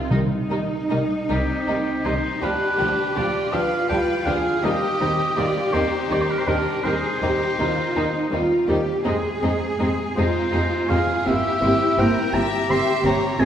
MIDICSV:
0, 0, Header, 1, 8, 480
1, 0, Start_track
1, 0, Key_signature, -3, "minor"
1, 0, Tempo, 790514
1, 63, Time_signature, 12, 3, 24, 8
1, 1021, Tempo, 739827
1, 1981, Tempo, 737101
1, 7261, Tempo, 708383
1, 8739, End_track
2, 0, Start_track
2, 0, Title_t, "Oboe"
2, 0, Program_c, 0, 68
2, 792, Note_on_c, 0, 67, 55
2, 1265, Note_on_c, 0, 72, 57
2, 1275, Note_off_c, 0, 67, 0
2, 1506, Note_on_c, 0, 71, 60
2, 1515, Note_off_c, 0, 72, 0
2, 1990, Note_on_c, 0, 74, 57
2, 1999, Note_off_c, 0, 71, 0
2, 2226, Note_on_c, 0, 77, 64
2, 2236, Note_off_c, 0, 74, 0
2, 2455, Note_off_c, 0, 77, 0
2, 2459, Note_on_c, 0, 79, 53
2, 2698, Note_on_c, 0, 77, 61
2, 2708, Note_off_c, 0, 79, 0
2, 2947, Note_on_c, 0, 75, 68
2, 2957, Note_off_c, 0, 77, 0
2, 3422, Note_on_c, 0, 74, 70
2, 3432, Note_off_c, 0, 75, 0
2, 3658, Note_on_c, 0, 72, 63
2, 3668, Note_off_c, 0, 74, 0
2, 3914, Note_on_c, 0, 74, 50
2, 3924, Note_off_c, 0, 72, 0
2, 3974, Note_on_c, 0, 72, 51
2, 3984, Note_off_c, 0, 74, 0
2, 4032, Note_on_c, 0, 70, 53
2, 4042, Note_off_c, 0, 72, 0
2, 4081, Note_on_c, 0, 72, 54
2, 4091, Note_off_c, 0, 70, 0
2, 4142, Note_on_c, 0, 70, 54
2, 4152, Note_off_c, 0, 72, 0
2, 4378, Note_on_c, 0, 72, 66
2, 4388, Note_off_c, 0, 70, 0
2, 5576, Note_off_c, 0, 72, 0
2, 6541, Note_on_c, 0, 72, 59
2, 7016, Note_on_c, 0, 77, 65
2, 7026, Note_off_c, 0, 72, 0
2, 7259, Note_on_c, 0, 76, 69
2, 7269, Note_off_c, 0, 77, 0
2, 7757, Note_on_c, 0, 79, 68
2, 7767, Note_off_c, 0, 76, 0
2, 7989, Note_on_c, 0, 82, 74
2, 7999, Note_off_c, 0, 79, 0
2, 8236, Note_on_c, 0, 84, 64
2, 8247, Note_off_c, 0, 82, 0
2, 8469, Note_off_c, 0, 84, 0
2, 8477, Note_on_c, 0, 82, 79
2, 8706, Note_on_c, 0, 80, 82
2, 8717, Note_off_c, 0, 82, 0
2, 8739, Note_off_c, 0, 80, 0
2, 8739, End_track
3, 0, Start_track
3, 0, Title_t, "Violin section"
3, 0, Program_c, 1, 48
3, 788, Note_on_c, 1, 60, 44
3, 1236, Note_off_c, 1, 60, 0
3, 1256, Note_on_c, 1, 63, 47
3, 1498, Note_off_c, 1, 63, 0
3, 1501, Note_on_c, 1, 62, 58
3, 1982, Note_off_c, 1, 62, 0
3, 1986, Note_on_c, 1, 65, 51
3, 2216, Note_on_c, 1, 71, 54
3, 2224, Note_off_c, 1, 65, 0
3, 2438, Note_off_c, 1, 71, 0
3, 2446, Note_on_c, 1, 71, 52
3, 2689, Note_off_c, 1, 71, 0
3, 2703, Note_on_c, 1, 68, 49
3, 2937, Note_on_c, 1, 67, 58
3, 2945, Note_off_c, 1, 68, 0
3, 3414, Note_off_c, 1, 67, 0
3, 3414, Note_on_c, 1, 65, 49
3, 3650, Note_on_c, 1, 63, 48
3, 3654, Note_off_c, 1, 65, 0
3, 4120, Note_off_c, 1, 63, 0
3, 4120, Note_on_c, 1, 62, 55
3, 4369, Note_off_c, 1, 62, 0
3, 4376, Note_on_c, 1, 63, 57
3, 5575, Note_off_c, 1, 63, 0
3, 6545, Note_on_c, 1, 63, 53
3, 6993, Note_off_c, 1, 63, 0
3, 7018, Note_on_c, 1, 68, 55
3, 7258, Note_off_c, 1, 68, 0
3, 7260, Note_on_c, 1, 67, 65
3, 7747, Note_off_c, 1, 67, 0
3, 7753, Note_on_c, 1, 70, 59
3, 7992, Note_off_c, 1, 70, 0
3, 7996, Note_on_c, 1, 76, 68
3, 8230, Note_off_c, 1, 76, 0
3, 8238, Note_on_c, 1, 76, 65
3, 8466, Note_off_c, 1, 76, 0
3, 8473, Note_on_c, 1, 73, 58
3, 8705, Note_off_c, 1, 73, 0
3, 8716, Note_on_c, 1, 72, 58
3, 8739, Note_off_c, 1, 72, 0
3, 8739, End_track
4, 0, Start_track
4, 0, Title_t, "Cello section"
4, 0, Program_c, 2, 48
4, 64, Note_on_c, 2, 63, 46
4, 1475, Note_off_c, 2, 63, 0
4, 1498, Note_on_c, 2, 67, 49
4, 2221, Note_off_c, 2, 67, 0
4, 2222, Note_on_c, 2, 65, 52
4, 2943, Note_on_c, 2, 67, 55
4, 2944, Note_off_c, 2, 65, 0
4, 4349, Note_off_c, 2, 67, 0
4, 4376, Note_on_c, 2, 68, 48
4, 4615, Note_off_c, 2, 68, 0
4, 4618, Note_on_c, 2, 67, 46
4, 4860, Note_off_c, 2, 67, 0
4, 4866, Note_on_c, 2, 65, 48
4, 5103, Note_off_c, 2, 65, 0
4, 5105, Note_on_c, 2, 63, 50
4, 5341, Note_off_c, 2, 63, 0
4, 5344, Note_on_c, 2, 65, 44
4, 5573, Note_off_c, 2, 65, 0
4, 5574, Note_on_c, 2, 67, 47
4, 5814, Note_off_c, 2, 67, 0
4, 5815, Note_on_c, 2, 68, 55
4, 6532, Note_off_c, 2, 68, 0
4, 6550, Note_on_c, 2, 65, 49
4, 7261, Note_off_c, 2, 65, 0
4, 7264, Note_on_c, 2, 64, 52
4, 7977, Note_off_c, 2, 64, 0
4, 7989, Note_on_c, 2, 67, 62
4, 8698, Note_on_c, 2, 65, 61
4, 8702, Note_off_c, 2, 67, 0
4, 8739, Note_off_c, 2, 65, 0
4, 8739, End_track
5, 0, Start_track
5, 0, Title_t, "Violin section"
5, 0, Program_c, 3, 48
5, 0, Note_on_c, 3, 65, 41
5, 62, Note_off_c, 3, 65, 0
5, 64, Note_on_c, 3, 63, 37
5, 113, Note_off_c, 3, 63, 0
5, 306, Note_on_c, 3, 63, 38
5, 308, Note_off_c, 3, 63, 0
5, 308, Note_on_c, 3, 63, 37
5, 356, Note_off_c, 3, 63, 0
5, 542, Note_on_c, 3, 63, 32
5, 543, Note_off_c, 3, 63, 0
5, 543, Note_on_c, 3, 63, 34
5, 591, Note_off_c, 3, 63, 0
5, 784, Note_on_c, 3, 63, 39
5, 786, Note_off_c, 3, 63, 0
5, 786, Note_on_c, 3, 63, 44
5, 835, Note_off_c, 3, 63, 0
5, 1019, Note_on_c, 3, 63, 37
5, 1020, Note_off_c, 3, 63, 0
5, 1020, Note_on_c, 3, 63, 36
5, 1072, Note_off_c, 3, 63, 0
5, 1258, Note_on_c, 3, 63, 35
5, 1310, Note_off_c, 3, 63, 0
5, 1499, Note_on_c, 3, 62, 36
5, 1500, Note_on_c, 3, 67, 38
5, 1551, Note_off_c, 3, 62, 0
5, 1551, Note_off_c, 3, 67, 0
5, 1731, Note_on_c, 3, 62, 36
5, 1733, Note_on_c, 3, 67, 36
5, 1783, Note_off_c, 3, 62, 0
5, 1785, Note_off_c, 3, 67, 0
5, 1977, Note_on_c, 3, 62, 36
5, 1979, Note_on_c, 3, 67, 36
5, 2030, Note_off_c, 3, 62, 0
5, 2031, Note_off_c, 3, 67, 0
5, 2216, Note_on_c, 3, 67, 39
5, 2217, Note_on_c, 3, 62, 42
5, 2268, Note_off_c, 3, 67, 0
5, 2269, Note_off_c, 3, 62, 0
5, 2455, Note_on_c, 3, 67, 35
5, 2460, Note_on_c, 3, 62, 33
5, 2507, Note_off_c, 3, 67, 0
5, 2512, Note_off_c, 3, 62, 0
5, 2694, Note_on_c, 3, 67, 37
5, 2695, Note_on_c, 3, 62, 35
5, 2746, Note_off_c, 3, 67, 0
5, 2747, Note_off_c, 3, 62, 0
5, 2938, Note_on_c, 3, 60, 41
5, 2941, Note_on_c, 3, 63, 44
5, 2990, Note_off_c, 3, 60, 0
5, 2993, Note_off_c, 3, 63, 0
5, 3182, Note_on_c, 3, 60, 37
5, 3183, Note_on_c, 3, 63, 38
5, 3234, Note_off_c, 3, 60, 0
5, 3236, Note_off_c, 3, 63, 0
5, 3413, Note_on_c, 3, 60, 35
5, 3413, Note_on_c, 3, 63, 33
5, 3465, Note_off_c, 3, 60, 0
5, 3465, Note_off_c, 3, 63, 0
5, 3657, Note_on_c, 3, 63, 41
5, 3659, Note_on_c, 3, 60, 40
5, 3709, Note_off_c, 3, 63, 0
5, 3711, Note_off_c, 3, 60, 0
5, 3894, Note_on_c, 3, 60, 40
5, 3895, Note_on_c, 3, 63, 41
5, 3946, Note_off_c, 3, 60, 0
5, 3947, Note_off_c, 3, 63, 0
5, 4133, Note_on_c, 3, 60, 38
5, 4135, Note_on_c, 3, 63, 35
5, 4185, Note_off_c, 3, 60, 0
5, 4187, Note_off_c, 3, 63, 0
5, 4378, Note_on_c, 3, 63, 37
5, 4380, Note_on_c, 3, 60, 39
5, 4430, Note_off_c, 3, 63, 0
5, 4432, Note_off_c, 3, 60, 0
5, 4627, Note_on_c, 3, 60, 40
5, 4628, Note_on_c, 3, 63, 43
5, 4679, Note_off_c, 3, 60, 0
5, 4680, Note_off_c, 3, 63, 0
5, 4865, Note_on_c, 3, 60, 42
5, 4865, Note_on_c, 3, 63, 42
5, 4917, Note_off_c, 3, 60, 0
5, 4917, Note_off_c, 3, 63, 0
5, 5101, Note_on_c, 3, 60, 41
5, 5103, Note_on_c, 3, 63, 49
5, 5153, Note_off_c, 3, 60, 0
5, 5155, Note_off_c, 3, 63, 0
5, 5342, Note_on_c, 3, 63, 39
5, 5345, Note_on_c, 3, 60, 36
5, 5394, Note_off_c, 3, 63, 0
5, 5397, Note_off_c, 3, 60, 0
5, 5577, Note_on_c, 3, 63, 39
5, 5579, Note_on_c, 3, 60, 38
5, 5629, Note_off_c, 3, 63, 0
5, 5631, Note_off_c, 3, 60, 0
5, 5814, Note_on_c, 3, 63, 46
5, 5815, Note_on_c, 3, 60, 46
5, 5866, Note_off_c, 3, 63, 0
5, 5867, Note_off_c, 3, 60, 0
5, 6062, Note_on_c, 3, 60, 42
5, 6064, Note_on_c, 3, 63, 43
5, 6114, Note_off_c, 3, 60, 0
5, 6116, Note_off_c, 3, 63, 0
5, 6306, Note_on_c, 3, 60, 36
5, 6306, Note_on_c, 3, 63, 38
5, 6358, Note_off_c, 3, 60, 0
5, 6358, Note_off_c, 3, 63, 0
5, 6550, Note_on_c, 3, 60, 48
5, 6552, Note_on_c, 3, 63, 48
5, 6602, Note_off_c, 3, 60, 0
5, 6604, Note_off_c, 3, 63, 0
5, 6781, Note_on_c, 3, 60, 40
5, 6782, Note_on_c, 3, 63, 41
5, 6834, Note_off_c, 3, 60, 0
5, 6834, Note_off_c, 3, 63, 0
5, 7020, Note_on_c, 3, 60, 43
5, 7022, Note_on_c, 3, 63, 39
5, 7072, Note_off_c, 3, 60, 0
5, 7074, Note_off_c, 3, 63, 0
5, 7255, Note_on_c, 3, 60, 44
5, 7256, Note_off_c, 3, 60, 0
5, 7256, Note_on_c, 3, 60, 41
5, 7310, Note_off_c, 3, 60, 0
5, 7498, Note_on_c, 3, 60, 45
5, 7552, Note_off_c, 3, 60, 0
5, 7740, Note_on_c, 3, 60, 46
5, 7742, Note_off_c, 3, 60, 0
5, 7742, Note_on_c, 3, 60, 47
5, 7797, Note_off_c, 3, 60, 0
5, 7982, Note_on_c, 3, 60, 48
5, 7986, Note_off_c, 3, 60, 0
5, 7986, Note_on_c, 3, 60, 45
5, 8040, Note_off_c, 3, 60, 0
5, 8228, Note_on_c, 3, 60, 37
5, 8230, Note_off_c, 3, 60, 0
5, 8230, Note_on_c, 3, 60, 40
5, 8284, Note_off_c, 3, 60, 0
5, 8462, Note_on_c, 3, 60, 41
5, 8463, Note_off_c, 3, 60, 0
5, 8463, Note_on_c, 3, 60, 44
5, 8517, Note_off_c, 3, 60, 0
5, 8700, Note_on_c, 3, 60, 48
5, 8739, Note_off_c, 3, 60, 0
5, 8739, End_track
6, 0, Start_track
6, 0, Title_t, "Viola section"
6, 0, Program_c, 4, 48
6, 63, Note_on_c, 4, 51, 42
6, 65, Note_on_c, 4, 55, 43
6, 112, Note_off_c, 4, 51, 0
6, 114, Note_off_c, 4, 55, 0
6, 302, Note_on_c, 4, 51, 33
6, 303, Note_on_c, 4, 55, 35
6, 351, Note_off_c, 4, 51, 0
6, 352, Note_off_c, 4, 55, 0
6, 551, Note_on_c, 4, 55, 37
6, 552, Note_on_c, 4, 51, 33
6, 599, Note_off_c, 4, 55, 0
6, 600, Note_off_c, 4, 51, 0
6, 790, Note_on_c, 4, 55, 42
6, 791, Note_on_c, 4, 51, 43
6, 838, Note_off_c, 4, 55, 0
6, 840, Note_off_c, 4, 51, 0
6, 1021, Note_on_c, 4, 51, 37
6, 1023, Note_on_c, 4, 55, 37
6, 1073, Note_off_c, 4, 51, 0
6, 1075, Note_off_c, 4, 55, 0
6, 1259, Note_on_c, 4, 51, 34
6, 1259, Note_on_c, 4, 55, 39
6, 1311, Note_off_c, 4, 51, 0
6, 1311, Note_off_c, 4, 55, 0
6, 1504, Note_on_c, 4, 53, 35
6, 1504, Note_on_c, 4, 55, 35
6, 1556, Note_off_c, 4, 53, 0
6, 1556, Note_off_c, 4, 55, 0
6, 1742, Note_on_c, 4, 53, 33
6, 1743, Note_on_c, 4, 55, 34
6, 1794, Note_off_c, 4, 53, 0
6, 1795, Note_off_c, 4, 55, 0
6, 1987, Note_on_c, 4, 53, 38
6, 1988, Note_on_c, 4, 55, 37
6, 2039, Note_off_c, 4, 53, 0
6, 2040, Note_off_c, 4, 55, 0
6, 2223, Note_on_c, 4, 53, 39
6, 2227, Note_on_c, 4, 55, 37
6, 2275, Note_off_c, 4, 53, 0
6, 2279, Note_off_c, 4, 55, 0
6, 2466, Note_on_c, 4, 55, 34
6, 2467, Note_on_c, 4, 53, 34
6, 2518, Note_off_c, 4, 55, 0
6, 2519, Note_off_c, 4, 53, 0
6, 2704, Note_on_c, 4, 53, 34
6, 2704, Note_on_c, 4, 55, 36
6, 2756, Note_off_c, 4, 53, 0
6, 2756, Note_off_c, 4, 55, 0
6, 2941, Note_on_c, 4, 51, 42
6, 2944, Note_on_c, 4, 55, 41
6, 2993, Note_off_c, 4, 51, 0
6, 2996, Note_off_c, 4, 55, 0
6, 3184, Note_on_c, 4, 55, 33
6, 3185, Note_on_c, 4, 51, 33
6, 3237, Note_off_c, 4, 51, 0
6, 3237, Note_off_c, 4, 55, 0
6, 3418, Note_on_c, 4, 51, 39
6, 3418, Note_on_c, 4, 55, 38
6, 3470, Note_off_c, 4, 51, 0
6, 3470, Note_off_c, 4, 55, 0
6, 3654, Note_on_c, 4, 51, 41
6, 3654, Note_on_c, 4, 55, 45
6, 3706, Note_off_c, 4, 51, 0
6, 3706, Note_off_c, 4, 55, 0
6, 3897, Note_on_c, 4, 51, 41
6, 3897, Note_on_c, 4, 55, 39
6, 3949, Note_off_c, 4, 51, 0
6, 3949, Note_off_c, 4, 55, 0
6, 4140, Note_on_c, 4, 51, 38
6, 4140, Note_on_c, 4, 55, 39
6, 4192, Note_off_c, 4, 51, 0
6, 4193, Note_off_c, 4, 55, 0
6, 4379, Note_on_c, 4, 51, 39
6, 4379, Note_on_c, 4, 55, 37
6, 4431, Note_off_c, 4, 51, 0
6, 4431, Note_off_c, 4, 55, 0
6, 4624, Note_on_c, 4, 51, 41
6, 4624, Note_on_c, 4, 55, 36
6, 4676, Note_off_c, 4, 51, 0
6, 4676, Note_off_c, 4, 55, 0
6, 4865, Note_on_c, 4, 51, 40
6, 4866, Note_on_c, 4, 55, 42
6, 4917, Note_off_c, 4, 51, 0
6, 4918, Note_off_c, 4, 55, 0
6, 5105, Note_on_c, 4, 51, 42
6, 5106, Note_on_c, 4, 55, 42
6, 5157, Note_off_c, 4, 51, 0
6, 5158, Note_off_c, 4, 55, 0
6, 5335, Note_on_c, 4, 55, 42
6, 5336, Note_on_c, 4, 51, 41
6, 5387, Note_off_c, 4, 55, 0
6, 5388, Note_off_c, 4, 51, 0
6, 5577, Note_on_c, 4, 55, 42
6, 5578, Note_on_c, 4, 51, 40
6, 5629, Note_off_c, 4, 55, 0
6, 5630, Note_off_c, 4, 51, 0
6, 5813, Note_on_c, 4, 56, 46
6, 5815, Note_on_c, 4, 48, 49
6, 5865, Note_off_c, 4, 56, 0
6, 5867, Note_off_c, 4, 48, 0
6, 6060, Note_on_c, 4, 48, 38
6, 6060, Note_on_c, 4, 56, 39
6, 6112, Note_off_c, 4, 48, 0
6, 6112, Note_off_c, 4, 56, 0
6, 6305, Note_on_c, 4, 48, 41
6, 6307, Note_on_c, 4, 56, 40
6, 6357, Note_off_c, 4, 48, 0
6, 6359, Note_off_c, 4, 56, 0
6, 6544, Note_on_c, 4, 48, 49
6, 6545, Note_on_c, 4, 56, 46
6, 6596, Note_off_c, 4, 48, 0
6, 6597, Note_off_c, 4, 56, 0
6, 6779, Note_on_c, 4, 48, 44
6, 6781, Note_on_c, 4, 56, 42
6, 6831, Note_off_c, 4, 48, 0
6, 6833, Note_off_c, 4, 56, 0
6, 7018, Note_on_c, 4, 48, 43
6, 7021, Note_on_c, 4, 56, 42
6, 7070, Note_off_c, 4, 48, 0
6, 7073, Note_off_c, 4, 56, 0
6, 7259, Note_on_c, 4, 48, 41
6, 7260, Note_on_c, 4, 58, 40
6, 7314, Note_off_c, 4, 48, 0
6, 7314, Note_off_c, 4, 58, 0
6, 7504, Note_on_c, 4, 48, 42
6, 7504, Note_on_c, 4, 58, 42
6, 7558, Note_off_c, 4, 48, 0
6, 7558, Note_off_c, 4, 58, 0
6, 7749, Note_on_c, 4, 48, 40
6, 7751, Note_on_c, 4, 58, 43
6, 7803, Note_off_c, 4, 48, 0
6, 7805, Note_off_c, 4, 58, 0
6, 7991, Note_on_c, 4, 58, 46
6, 7992, Note_on_c, 4, 48, 45
6, 8045, Note_off_c, 4, 58, 0
6, 8046, Note_off_c, 4, 48, 0
6, 8230, Note_on_c, 4, 58, 43
6, 8233, Note_on_c, 4, 48, 43
6, 8285, Note_off_c, 4, 58, 0
6, 8287, Note_off_c, 4, 48, 0
6, 8462, Note_on_c, 4, 48, 40
6, 8463, Note_on_c, 4, 58, 41
6, 8516, Note_off_c, 4, 48, 0
6, 8518, Note_off_c, 4, 58, 0
6, 8698, Note_on_c, 4, 56, 55
6, 8700, Note_on_c, 4, 48, 52
6, 8739, Note_off_c, 4, 48, 0
6, 8739, Note_off_c, 4, 56, 0
6, 8739, End_track
7, 0, Start_track
7, 0, Title_t, "Timpani"
7, 0, Program_c, 5, 47
7, 64, Note_on_c, 5, 48, 57
7, 765, Note_off_c, 5, 48, 0
7, 8739, End_track
8, 0, Start_track
8, 0, Title_t, "Double bass section"
8, 0, Program_c, 6, 48
8, 63, Note_on_c, 6, 36, 43
8, 112, Note_off_c, 6, 36, 0
8, 305, Note_on_c, 6, 36, 41
8, 353, Note_off_c, 6, 36, 0
8, 548, Note_on_c, 6, 36, 45
8, 597, Note_off_c, 6, 36, 0
8, 791, Note_on_c, 6, 36, 46
8, 840, Note_off_c, 6, 36, 0
8, 1023, Note_on_c, 6, 36, 37
8, 1075, Note_off_c, 6, 36, 0
8, 1262, Note_on_c, 6, 36, 45
8, 1314, Note_off_c, 6, 36, 0
8, 1502, Note_on_c, 6, 38, 41
8, 1554, Note_off_c, 6, 38, 0
8, 1744, Note_on_c, 6, 38, 48
8, 1796, Note_off_c, 6, 38, 0
8, 1985, Note_on_c, 6, 38, 43
8, 2037, Note_off_c, 6, 38, 0
8, 2221, Note_on_c, 6, 38, 38
8, 2273, Note_off_c, 6, 38, 0
8, 2465, Note_on_c, 6, 38, 42
8, 2517, Note_off_c, 6, 38, 0
8, 2705, Note_on_c, 6, 38, 45
8, 2757, Note_off_c, 6, 38, 0
8, 2949, Note_on_c, 6, 39, 39
8, 3001, Note_off_c, 6, 39, 0
8, 3188, Note_on_c, 6, 39, 45
8, 3240, Note_off_c, 6, 39, 0
8, 3424, Note_on_c, 6, 39, 44
8, 3476, Note_off_c, 6, 39, 0
8, 3664, Note_on_c, 6, 39, 46
8, 3716, Note_off_c, 6, 39, 0
8, 3898, Note_on_c, 6, 39, 41
8, 3951, Note_off_c, 6, 39, 0
8, 4137, Note_on_c, 6, 39, 44
8, 4189, Note_off_c, 6, 39, 0
8, 4381, Note_on_c, 6, 39, 42
8, 4433, Note_off_c, 6, 39, 0
8, 4630, Note_on_c, 6, 39, 50
8, 4682, Note_off_c, 6, 39, 0
8, 4870, Note_on_c, 6, 39, 47
8, 4922, Note_off_c, 6, 39, 0
8, 5109, Note_on_c, 6, 39, 41
8, 5161, Note_off_c, 6, 39, 0
8, 5348, Note_on_c, 6, 39, 37
8, 5400, Note_off_c, 6, 39, 0
8, 5582, Note_on_c, 6, 39, 47
8, 5634, Note_off_c, 6, 39, 0
8, 5821, Note_on_c, 6, 41, 45
8, 5873, Note_off_c, 6, 41, 0
8, 6064, Note_on_c, 6, 41, 47
8, 6116, Note_off_c, 6, 41, 0
8, 6310, Note_on_c, 6, 41, 43
8, 6362, Note_off_c, 6, 41, 0
8, 6550, Note_on_c, 6, 41, 47
8, 6602, Note_off_c, 6, 41, 0
8, 6783, Note_on_c, 6, 41, 44
8, 6835, Note_off_c, 6, 41, 0
8, 7020, Note_on_c, 6, 41, 50
8, 7072, Note_off_c, 6, 41, 0
8, 7260, Note_on_c, 6, 31, 44
8, 7314, Note_off_c, 6, 31, 0
8, 7501, Note_on_c, 6, 31, 46
8, 7556, Note_off_c, 6, 31, 0
8, 7744, Note_on_c, 6, 31, 52
8, 7799, Note_off_c, 6, 31, 0
8, 7985, Note_on_c, 6, 31, 48
8, 8039, Note_off_c, 6, 31, 0
8, 8229, Note_on_c, 6, 31, 43
8, 8283, Note_off_c, 6, 31, 0
8, 8466, Note_on_c, 6, 31, 50
8, 8520, Note_off_c, 6, 31, 0
8, 8703, Note_on_c, 6, 32, 50
8, 8739, Note_off_c, 6, 32, 0
8, 8739, End_track
0, 0, End_of_file